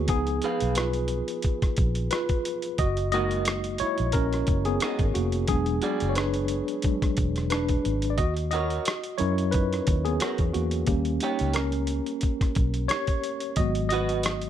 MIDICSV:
0, 0, Header, 1, 6, 480
1, 0, Start_track
1, 0, Tempo, 674157
1, 63, Time_signature, 4, 2, 24, 8
1, 10321, End_track
2, 0, Start_track
2, 0, Title_t, "Clean electric guitar"
2, 0, Program_c, 0, 27
2, 314, Note_on_c, 0, 68, 73
2, 317, Note_on_c, 0, 71, 69
2, 324, Note_on_c, 0, 77, 71
2, 532, Note_off_c, 0, 68, 0
2, 533, Note_off_c, 0, 71, 0
2, 536, Note_off_c, 0, 77, 0
2, 2236, Note_on_c, 0, 66, 68
2, 2238, Note_on_c, 0, 70, 67
2, 2243, Note_on_c, 0, 75, 78
2, 2453, Note_off_c, 0, 66, 0
2, 2453, Note_off_c, 0, 70, 0
2, 2456, Note_off_c, 0, 75, 0
2, 3431, Note_on_c, 0, 66, 69
2, 3438, Note_on_c, 0, 70, 77
2, 3446, Note_on_c, 0, 75, 88
2, 3551, Note_off_c, 0, 66, 0
2, 3555, Note_off_c, 0, 70, 0
2, 3558, Note_off_c, 0, 75, 0
2, 4147, Note_on_c, 0, 66, 65
2, 4151, Note_on_c, 0, 68, 70
2, 4156, Note_on_c, 0, 74, 76
2, 4368, Note_off_c, 0, 66, 0
2, 4370, Note_off_c, 0, 68, 0
2, 4373, Note_off_c, 0, 74, 0
2, 6073, Note_on_c, 0, 66, 64
2, 6082, Note_on_c, 0, 70, 77
2, 6089, Note_on_c, 0, 73, 70
2, 6291, Note_off_c, 0, 66, 0
2, 6295, Note_off_c, 0, 70, 0
2, 6299, Note_off_c, 0, 73, 0
2, 7271, Note_on_c, 0, 66, 76
2, 7276, Note_on_c, 0, 70, 83
2, 7283, Note_on_c, 0, 73, 81
2, 7391, Note_off_c, 0, 66, 0
2, 7393, Note_off_c, 0, 70, 0
2, 7397, Note_off_c, 0, 73, 0
2, 7994, Note_on_c, 0, 63, 67
2, 7998, Note_on_c, 0, 67, 72
2, 8002, Note_on_c, 0, 73, 77
2, 8211, Note_off_c, 0, 63, 0
2, 8213, Note_off_c, 0, 67, 0
2, 8216, Note_off_c, 0, 73, 0
2, 9914, Note_on_c, 0, 66, 75
2, 9921, Note_on_c, 0, 71, 81
2, 9923, Note_on_c, 0, 75, 89
2, 10132, Note_off_c, 0, 66, 0
2, 10135, Note_off_c, 0, 71, 0
2, 10136, Note_off_c, 0, 75, 0
2, 10321, End_track
3, 0, Start_track
3, 0, Title_t, "Tine electric piano"
3, 0, Program_c, 1, 4
3, 0, Control_c, 1, 64, 127
3, 0, Note_on_c, 1, 58, 55
3, 0, Note_on_c, 1, 59, 67
3, 0, Note_on_c, 1, 63, 67
3, 0, Note_on_c, 1, 64, 61
3, 0, Note_on_c, 1, 68, 50
3, 0, Note_on_c, 1, 71, 85
3, 0, Note_on_c, 1, 73, 86
3, 62, Note_on_c, 1, 53, 47
3, 68, Note_off_c, 1, 59, 0
3, 68, Note_off_c, 1, 68, 0
3, 68, Note_on_c, 1, 59, 69
3, 68, Note_on_c, 1, 68, 88
3, 73, Note_off_c, 1, 71, 0
3, 73, Control_c, 1, 64, 0
3, 74, Note_off_c, 1, 63, 0
3, 74, Note_on_c, 1, 63, 53
3, 75, Note_off_c, 1, 73, 0
3, 77, Note_off_c, 1, 64, 0
3, 80, Note_off_c, 1, 58, 0
3, 188, Control_c, 1, 64, 127
3, 521, Note_off_c, 1, 59, 0
3, 549, Note_on_c, 1, 71, 81
3, 555, Note_on_c, 1, 65, 60
3, 560, Note_off_c, 1, 68, 0
3, 754, Note_off_c, 1, 53, 0
3, 760, Note_off_c, 1, 63, 0
3, 1481, Note_off_c, 1, 65, 0
3, 1493, Note_off_c, 1, 71, 0
3, 1502, Note_on_c, 1, 71, 85
3, 1514, Note_on_c, 1, 65, 68
3, 1954, Note_off_c, 1, 71, 0
3, 1960, Note_off_c, 1, 65, 0
3, 1986, Note_on_c, 1, 75, 93
3, 1993, Control_c, 1, 64, 0
3, 1996, Note_on_c, 1, 66, 77
3, 2110, Control_c, 1, 64, 127
3, 2208, Note_off_c, 1, 75, 0
3, 2214, Note_off_c, 1, 66, 0
3, 2220, Note_on_c, 1, 56, 51
3, 2222, Note_on_c, 1, 75, 90
3, 2226, Note_on_c, 1, 58, 48
3, 2233, Note_on_c, 1, 63, 54
3, 2233, Note_on_c, 1, 66, 73
3, 2674, Note_off_c, 1, 75, 0
3, 2680, Note_off_c, 1, 66, 0
3, 2705, Note_on_c, 1, 73, 89
3, 2716, Note_on_c, 1, 64, 65
3, 2913, Note_off_c, 1, 56, 0
3, 2916, Note_off_c, 1, 58, 0
3, 2920, Note_off_c, 1, 63, 0
3, 2927, Note_off_c, 1, 73, 0
3, 2934, Note_off_c, 1, 64, 0
3, 2941, Note_on_c, 1, 70, 84
3, 2953, Note_on_c, 1, 61, 63
3, 3289, Note_off_c, 1, 70, 0
3, 3295, Note_off_c, 1, 61, 0
3, 3314, Note_on_c, 1, 68, 83
3, 3324, Note_on_c, 1, 59, 64
3, 3638, Note_off_c, 1, 68, 0
3, 3643, Note_off_c, 1, 59, 0
3, 3661, Note_on_c, 1, 66, 77
3, 3676, Note_on_c, 1, 58, 55
3, 3885, Note_off_c, 1, 66, 0
3, 3893, Note_off_c, 1, 58, 0
3, 3906, Note_on_c, 1, 68, 81
3, 3910, Note_on_c, 1, 54, 49
3, 3911, Control_c, 1, 64, 0
3, 3915, Note_on_c, 1, 56, 44
3, 3917, Note_on_c, 1, 62, 59
3, 3920, Note_on_c, 1, 59, 65
3, 4030, Control_c, 1, 64, 127
3, 4319, Note_off_c, 1, 59, 0
3, 4338, Note_on_c, 1, 73, 63
3, 4353, Note_off_c, 1, 68, 0
3, 4383, Note_off_c, 1, 73, 0
3, 4385, Note_on_c, 1, 71, 78
3, 4386, Note_off_c, 1, 62, 0
3, 4395, Note_on_c, 1, 62, 59
3, 4858, Note_off_c, 1, 54, 0
3, 4865, Note_off_c, 1, 56, 0
3, 4866, Note_off_c, 1, 62, 0
3, 4867, Note_on_c, 1, 54, 46
3, 4873, Note_on_c, 1, 56, 37
3, 4875, Note_on_c, 1, 62, 46
3, 5081, Note_off_c, 1, 54, 0
3, 5085, Note_off_c, 1, 56, 0
3, 5086, Note_off_c, 1, 62, 0
3, 5333, Note_off_c, 1, 71, 0
3, 5341, Note_on_c, 1, 71, 80
3, 5350, Note_on_c, 1, 62, 68
3, 5754, Note_off_c, 1, 62, 0
3, 5768, Note_on_c, 1, 74, 68
3, 5791, Note_off_c, 1, 71, 0
3, 5818, Note_off_c, 1, 74, 0
3, 5822, Note_on_c, 1, 75, 90
3, 5830, Note_on_c, 1, 66, 75
3, 5831, Control_c, 1, 64, 0
3, 5930, Note_off_c, 1, 75, 0
3, 5937, Note_off_c, 1, 66, 0
3, 5952, Control_c, 1, 64, 127
3, 6058, Note_on_c, 1, 75, 87
3, 6072, Note_on_c, 1, 66, 63
3, 6519, Note_off_c, 1, 66, 0
3, 6534, Note_on_c, 1, 73, 78
3, 6536, Note_on_c, 1, 54, 47
3, 6544, Note_on_c, 1, 70, 48
3, 6546, Note_on_c, 1, 61, 54
3, 6546, Note_on_c, 1, 64, 63
3, 6555, Note_off_c, 1, 75, 0
3, 6768, Note_off_c, 1, 64, 0
3, 6773, Note_on_c, 1, 71, 83
3, 6786, Note_off_c, 1, 73, 0
3, 6786, Note_on_c, 1, 63, 58
3, 7131, Note_off_c, 1, 63, 0
3, 7154, Note_on_c, 1, 68, 78
3, 7163, Note_off_c, 1, 71, 0
3, 7169, Note_on_c, 1, 59, 63
3, 7478, Note_off_c, 1, 68, 0
3, 7486, Note_off_c, 1, 59, 0
3, 7500, Note_on_c, 1, 66, 71
3, 7514, Note_on_c, 1, 58, 57
3, 7609, Note_off_c, 1, 66, 0
3, 7620, Note_off_c, 1, 58, 0
3, 7711, Note_off_c, 1, 54, 0
3, 7715, Note_off_c, 1, 70, 0
3, 7716, Note_off_c, 1, 61, 0
3, 7737, Note_on_c, 1, 67, 77
3, 7741, Note_on_c, 1, 55, 50
3, 7743, Note_on_c, 1, 58, 60
3, 7750, Note_on_c, 1, 61, 55
3, 7751, Control_c, 1, 64, 0
3, 7884, Control_c, 1, 64, 127
3, 8199, Note_off_c, 1, 58, 0
3, 8219, Note_on_c, 1, 70, 71
3, 8224, Note_off_c, 1, 61, 0
3, 8232, Note_on_c, 1, 61, 61
3, 8235, Note_off_c, 1, 67, 0
3, 8434, Note_off_c, 1, 55, 0
3, 9152, Note_off_c, 1, 70, 0
3, 9159, Note_off_c, 1, 61, 0
3, 9173, Note_on_c, 1, 73, 89
3, 9187, Note_on_c, 1, 67, 65
3, 9636, Note_off_c, 1, 67, 0
3, 9660, Note_on_c, 1, 75, 86
3, 9664, Note_on_c, 1, 54, 51
3, 9670, Note_on_c, 1, 56, 46
3, 9671, Note_on_c, 1, 59, 54
3, 9673, Note_off_c, 1, 73, 0
3, 9673, Control_c, 1, 64, 0
3, 9677, Note_on_c, 1, 66, 68
3, 9813, Control_c, 1, 64, 127
3, 9882, Note_off_c, 1, 75, 0
3, 9890, Note_on_c, 1, 75, 92
3, 9894, Note_off_c, 1, 66, 0
3, 9907, Note_on_c, 1, 66, 63
3, 10321, Note_off_c, 1, 54, 0
3, 10321, Note_off_c, 1, 56, 0
3, 10321, Note_off_c, 1, 59, 0
3, 10321, Note_off_c, 1, 66, 0
3, 10321, Note_off_c, 1, 75, 0
3, 10321, End_track
4, 0, Start_track
4, 0, Title_t, "Fingered electric bass"
4, 0, Program_c, 2, 33
4, 68, Note_on_c, 2, 37, 80
4, 277, Note_off_c, 2, 37, 0
4, 443, Note_on_c, 2, 35, 78
4, 862, Note_off_c, 2, 35, 0
4, 1273, Note_on_c, 2, 34, 76
4, 1480, Note_off_c, 2, 34, 0
4, 1993, Note_on_c, 2, 30, 90
4, 2679, Note_off_c, 2, 30, 0
4, 2847, Note_on_c, 2, 34, 68
4, 3147, Note_off_c, 2, 34, 0
4, 3194, Note_on_c, 2, 30, 72
4, 3401, Note_off_c, 2, 30, 0
4, 3561, Note_on_c, 2, 32, 76
4, 3653, Note_off_c, 2, 32, 0
4, 3675, Note_on_c, 2, 29, 79
4, 3881, Note_off_c, 2, 29, 0
4, 3912, Note_on_c, 2, 28, 82
4, 4119, Note_off_c, 2, 28, 0
4, 4287, Note_on_c, 2, 30, 74
4, 4705, Note_off_c, 2, 30, 0
4, 5116, Note_on_c, 2, 28, 66
4, 5533, Note_off_c, 2, 28, 0
4, 5596, Note_on_c, 2, 32, 77
4, 5833, Note_on_c, 2, 39, 82
4, 5844, Note_off_c, 2, 32, 0
4, 6251, Note_off_c, 2, 39, 0
4, 6558, Note_on_c, 2, 42, 83
4, 6974, Note_off_c, 2, 42, 0
4, 7036, Note_on_c, 2, 39, 73
4, 7242, Note_off_c, 2, 39, 0
4, 7403, Note_on_c, 2, 40, 78
4, 7494, Note_off_c, 2, 40, 0
4, 7513, Note_on_c, 2, 40, 71
4, 7720, Note_off_c, 2, 40, 0
4, 7748, Note_on_c, 2, 39, 83
4, 7957, Note_off_c, 2, 39, 0
4, 8125, Note_on_c, 2, 37, 77
4, 8543, Note_off_c, 2, 37, 0
4, 8953, Note_on_c, 2, 35, 77
4, 9160, Note_off_c, 2, 35, 0
4, 9669, Note_on_c, 2, 32, 81
4, 10321, Note_off_c, 2, 32, 0
4, 10321, End_track
5, 0, Start_track
5, 0, Title_t, "Muted fingered electric bass strokes"
5, 1162, Note_on_c, 9, 29, 40
5, 1233, Note_off_c, 9, 29, 0
5, 2714, Note_on_c, 9, 29, 40
5, 2785, Note_off_c, 9, 29, 0
5, 5007, Note_on_c, 9, 29, 40
5, 5078, Note_off_c, 9, 29, 0
5, 8844, Note_on_c, 9, 29, 44
5, 8915, Note_off_c, 9, 29, 0
5, 10321, End_track
6, 0, Start_track
6, 0, Title_t, "Drums"
6, 56, Note_on_c, 9, 42, 70
6, 62, Note_on_c, 9, 36, 107
6, 127, Note_off_c, 9, 42, 0
6, 133, Note_off_c, 9, 36, 0
6, 190, Note_on_c, 9, 42, 38
6, 261, Note_off_c, 9, 42, 0
6, 297, Note_on_c, 9, 42, 65
6, 368, Note_off_c, 9, 42, 0
6, 430, Note_on_c, 9, 42, 49
6, 502, Note_off_c, 9, 42, 0
6, 536, Note_on_c, 9, 42, 87
6, 553, Note_on_c, 9, 37, 91
6, 607, Note_off_c, 9, 42, 0
6, 624, Note_off_c, 9, 37, 0
6, 666, Note_on_c, 9, 42, 44
6, 737, Note_off_c, 9, 42, 0
6, 768, Note_on_c, 9, 42, 66
6, 839, Note_off_c, 9, 42, 0
6, 911, Note_on_c, 9, 42, 43
6, 982, Note_off_c, 9, 42, 0
6, 1014, Note_on_c, 9, 42, 61
6, 1029, Note_on_c, 9, 36, 75
6, 1086, Note_off_c, 9, 42, 0
6, 1101, Note_off_c, 9, 36, 0
6, 1154, Note_on_c, 9, 42, 37
6, 1156, Note_on_c, 9, 36, 79
6, 1163, Note_on_c, 9, 37, 31
6, 1226, Note_off_c, 9, 42, 0
6, 1227, Note_off_c, 9, 36, 0
6, 1234, Note_off_c, 9, 37, 0
6, 1257, Note_on_c, 9, 42, 57
6, 1267, Note_on_c, 9, 36, 93
6, 1328, Note_off_c, 9, 42, 0
6, 1338, Note_off_c, 9, 36, 0
6, 1389, Note_on_c, 9, 42, 40
6, 1460, Note_off_c, 9, 42, 0
6, 1500, Note_on_c, 9, 42, 83
6, 1515, Note_on_c, 9, 37, 95
6, 1572, Note_off_c, 9, 42, 0
6, 1586, Note_off_c, 9, 37, 0
6, 1630, Note_on_c, 9, 42, 41
6, 1634, Note_on_c, 9, 36, 81
6, 1701, Note_off_c, 9, 42, 0
6, 1705, Note_off_c, 9, 36, 0
6, 1746, Note_on_c, 9, 42, 57
6, 1817, Note_off_c, 9, 42, 0
6, 1868, Note_on_c, 9, 42, 46
6, 1939, Note_off_c, 9, 42, 0
6, 1981, Note_on_c, 9, 42, 73
6, 1984, Note_on_c, 9, 36, 102
6, 2052, Note_off_c, 9, 42, 0
6, 2056, Note_off_c, 9, 36, 0
6, 2114, Note_on_c, 9, 42, 39
6, 2185, Note_off_c, 9, 42, 0
6, 2221, Note_on_c, 9, 42, 59
6, 2293, Note_off_c, 9, 42, 0
6, 2356, Note_on_c, 9, 42, 46
6, 2427, Note_off_c, 9, 42, 0
6, 2458, Note_on_c, 9, 42, 82
6, 2476, Note_on_c, 9, 37, 102
6, 2530, Note_off_c, 9, 42, 0
6, 2547, Note_off_c, 9, 37, 0
6, 2591, Note_on_c, 9, 42, 41
6, 2662, Note_off_c, 9, 42, 0
6, 2694, Note_on_c, 9, 42, 65
6, 2765, Note_off_c, 9, 42, 0
6, 2831, Note_on_c, 9, 42, 44
6, 2903, Note_off_c, 9, 42, 0
6, 2935, Note_on_c, 9, 42, 62
6, 2950, Note_on_c, 9, 36, 81
6, 3006, Note_off_c, 9, 42, 0
6, 3021, Note_off_c, 9, 36, 0
6, 3080, Note_on_c, 9, 42, 39
6, 3088, Note_on_c, 9, 37, 31
6, 3151, Note_off_c, 9, 42, 0
6, 3159, Note_off_c, 9, 37, 0
6, 3181, Note_on_c, 9, 42, 62
6, 3189, Note_on_c, 9, 36, 93
6, 3252, Note_off_c, 9, 42, 0
6, 3260, Note_off_c, 9, 36, 0
6, 3311, Note_on_c, 9, 42, 40
6, 3382, Note_off_c, 9, 42, 0
6, 3420, Note_on_c, 9, 42, 89
6, 3434, Note_on_c, 9, 37, 97
6, 3492, Note_off_c, 9, 42, 0
6, 3506, Note_off_c, 9, 37, 0
6, 3551, Note_on_c, 9, 42, 45
6, 3555, Note_on_c, 9, 36, 84
6, 3623, Note_off_c, 9, 42, 0
6, 3626, Note_off_c, 9, 36, 0
6, 3667, Note_on_c, 9, 42, 59
6, 3739, Note_off_c, 9, 42, 0
6, 3790, Note_on_c, 9, 42, 46
6, 3861, Note_off_c, 9, 42, 0
6, 3898, Note_on_c, 9, 42, 74
6, 3904, Note_on_c, 9, 36, 110
6, 3970, Note_off_c, 9, 42, 0
6, 3975, Note_off_c, 9, 36, 0
6, 4030, Note_on_c, 9, 42, 37
6, 4101, Note_off_c, 9, 42, 0
6, 4141, Note_on_c, 9, 42, 63
6, 4212, Note_off_c, 9, 42, 0
6, 4274, Note_on_c, 9, 42, 49
6, 4346, Note_off_c, 9, 42, 0
6, 4382, Note_on_c, 9, 42, 85
6, 4399, Note_on_c, 9, 37, 101
6, 4453, Note_off_c, 9, 42, 0
6, 4471, Note_off_c, 9, 37, 0
6, 4511, Note_on_c, 9, 42, 43
6, 4583, Note_off_c, 9, 42, 0
6, 4616, Note_on_c, 9, 42, 62
6, 4687, Note_off_c, 9, 42, 0
6, 4757, Note_on_c, 9, 42, 44
6, 4828, Note_off_c, 9, 42, 0
6, 4858, Note_on_c, 9, 42, 63
6, 4873, Note_on_c, 9, 36, 79
6, 4930, Note_off_c, 9, 42, 0
6, 4944, Note_off_c, 9, 36, 0
6, 5000, Note_on_c, 9, 36, 90
6, 5001, Note_on_c, 9, 42, 40
6, 5009, Note_on_c, 9, 37, 29
6, 5071, Note_off_c, 9, 36, 0
6, 5072, Note_off_c, 9, 42, 0
6, 5080, Note_off_c, 9, 37, 0
6, 5103, Note_on_c, 9, 42, 62
6, 5110, Note_on_c, 9, 36, 88
6, 5174, Note_off_c, 9, 42, 0
6, 5181, Note_off_c, 9, 36, 0
6, 5238, Note_on_c, 9, 42, 41
6, 5253, Note_on_c, 9, 37, 28
6, 5309, Note_off_c, 9, 42, 0
6, 5324, Note_off_c, 9, 37, 0
6, 5341, Note_on_c, 9, 42, 87
6, 5355, Note_on_c, 9, 37, 94
6, 5412, Note_off_c, 9, 42, 0
6, 5427, Note_off_c, 9, 37, 0
6, 5472, Note_on_c, 9, 42, 43
6, 5477, Note_on_c, 9, 36, 83
6, 5543, Note_off_c, 9, 42, 0
6, 5548, Note_off_c, 9, 36, 0
6, 5590, Note_on_c, 9, 42, 59
6, 5661, Note_off_c, 9, 42, 0
6, 5711, Note_on_c, 9, 42, 47
6, 5782, Note_off_c, 9, 42, 0
6, 5822, Note_on_c, 9, 42, 68
6, 5827, Note_on_c, 9, 36, 105
6, 5893, Note_off_c, 9, 42, 0
6, 5898, Note_off_c, 9, 36, 0
6, 5956, Note_on_c, 9, 42, 41
6, 6027, Note_off_c, 9, 42, 0
6, 6062, Note_on_c, 9, 42, 61
6, 6133, Note_off_c, 9, 42, 0
6, 6197, Note_on_c, 9, 42, 46
6, 6268, Note_off_c, 9, 42, 0
6, 6304, Note_on_c, 9, 42, 88
6, 6322, Note_on_c, 9, 37, 97
6, 6375, Note_off_c, 9, 42, 0
6, 6393, Note_off_c, 9, 37, 0
6, 6433, Note_on_c, 9, 42, 41
6, 6504, Note_off_c, 9, 42, 0
6, 6539, Note_on_c, 9, 42, 62
6, 6610, Note_off_c, 9, 42, 0
6, 6680, Note_on_c, 9, 42, 48
6, 6751, Note_off_c, 9, 42, 0
6, 6781, Note_on_c, 9, 42, 59
6, 6795, Note_on_c, 9, 36, 84
6, 6852, Note_off_c, 9, 42, 0
6, 6866, Note_off_c, 9, 36, 0
6, 6925, Note_on_c, 9, 42, 38
6, 6933, Note_on_c, 9, 37, 31
6, 6996, Note_off_c, 9, 42, 0
6, 7004, Note_off_c, 9, 37, 0
6, 7026, Note_on_c, 9, 42, 61
6, 7032, Note_on_c, 9, 36, 96
6, 7097, Note_off_c, 9, 42, 0
6, 7103, Note_off_c, 9, 36, 0
6, 7159, Note_on_c, 9, 42, 39
6, 7230, Note_off_c, 9, 42, 0
6, 7264, Note_on_c, 9, 42, 80
6, 7278, Note_on_c, 9, 37, 98
6, 7335, Note_off_c, 9, 42, 0
6, 7349, Note_off_c, 9, 37, 0
6, 7392, Note_on_c, 9, 42, 44
6, 7397, Note_on_c, 9, 36, 82
6, 7463, Note_off_c, 9, 42, 0
6, 7468, Note_off_c, 9, 36, 0
6, 7507, Note_on_c, 9, 42, 59
6, 7578, Note_off_c, 9, 42, 0
6, 7627, Note_on_c, 9, 42, 46
6, 7698, Note_off_c, 9, 42, 0
6, 7736, Note_on_c, 9, 42, 67
6, 7742, Note_on_c, 9, 36, 107
6, 7807, Note_off_c, 9, 42, 0
6, 7813, Note_off_c, 9, 36, 0
6, 7868, Note_on_c, 9, 42, 39
6, 7939, Note_off_c, 9, 42, 0
6, 7978, Note_on_c, 9, 42, 65
6, 8049, Note_off_c, 9, 42, 0
6, 8109, Note_on_c, 9, 42, 44
6, 8180, Note_off_c, 9, 42, 0
6, 8213, Note_on_c, 9, 42, 88
6, 8231, Note_on_c, 9, 37, 101
6, 8284, Note_off_c, 9, 42, 0
6, 8302, Note_off_c, 9, 37, 0
6, 8346, Note_on_c, 9, 42, 41
6, 8417, Note_off_c, 9, 42, 0
6, 8452, Note_on_c, 9, 42, 63
6, 8523, Note_off_c, 9, 42, 0
6, 8590, Note_on_c, 9, 42, 45
6, 8661, Note_off_c, 9, 42, 0
6, 8693, Note_on_c, 9, 42, 62
6, 8709, Note_on_c, 9, 36, 76
6, 8764, Note_off_c, 9, 42, 0
6, 8780, Note_off_c, 9, 36, 0
6, 8836, Note_on_c, 9, 36, 83
6, 8838, Note_on_c, 9, 42, 40
6, 8846, Note_on_c, 9, 37, 30
6, 8908, Note_off_c, 9, 36, 0
6, 8909, Note_off_c, 9, 42, 0
6, 8917, Note_off_c, 9, 37, 0
6, 8937, Note_on_c, 9, 42, 57
6, 8946, Note_on_c, 9, 36, 101
6, 9009, Note_off_c, 9, 42, 0
6, 9017, Note_off_c, 9, 36, 0
6, 9069, Note_on_c, 9, 42, 42
6, 9140, Note_off_c, 9, 42, 0
6, 9178, Note_on_c, 9, 42, 87
6, 9192, Note_on_c, 9, 37, 105
6, 9249, Note_off_c, 9, 42, 0
6, 9264, Note_off_c, 9, 37, 0
6, 9308, Note_on_c, 9, 42, 45
6, 9312, Note_on_c, 9, 36, 78
6, 9379, Note_off_c, 9, 42, 0
6, 9384, Note_off_c, 9, 36, 0
6, 9424, Note_on_c, 9, 42, 59
6, 9495, Note_off_c, 9, 42, 0
6, 9544, Note_on_c, 9, 42, 47
6, 9615, Note_off_c, 9, 42, 0
6, 9654, Note_on_c, 9, 42, 71
6, 9660, Note_on_c, 9, 36, 101
6, 9725, Note_off_c, 9, 42, 0
6, 9732, Note_off_c, 9, 36, 0
6, 9790, Note_on_c, 9, 42, 40
6, 9861, Note_off_c, 9, 42, 0
6, 9900, Note_on_c, 9, 42, 62
6, 9971, Note_off_c, 9, 42, 0
6, 10032, Note_on_c, 9, 42, 45
6, 10103, Note_off_c, 9, 42, 0
6, 10134, Note_on_c, 9, 42, 89
6, 10152, Note_on_c, 9, 37, 98
6, 10206, Note_off_c, 9, 42, 0
6, 10223, Note_off_c, 9, 37, 0
6, 10264, Note_on_c, 9, 42, 42
6, 10321, Note_off_c, 9, 42, 0
6, 10321, End_track
0, 0, End_of_file